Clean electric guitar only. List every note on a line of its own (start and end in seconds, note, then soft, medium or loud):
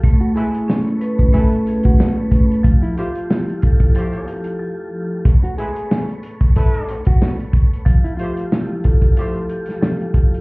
0.20 0.34 F#4 medium
0.36 0.83 G#4 medium
1.34 1.81 A4 medium
1.85 2.14 F#4 medium
2.82 2.96 E4 medium
2.99 3.46 F4 medium
5.43 5.57 F#4 medium
5.58 6.06 G#4 medium
6.56 7.04 A4 medium
7.07 7.36 F#4 medium
8.04 8.17 E4 medium
8.17 8.65 F4 medium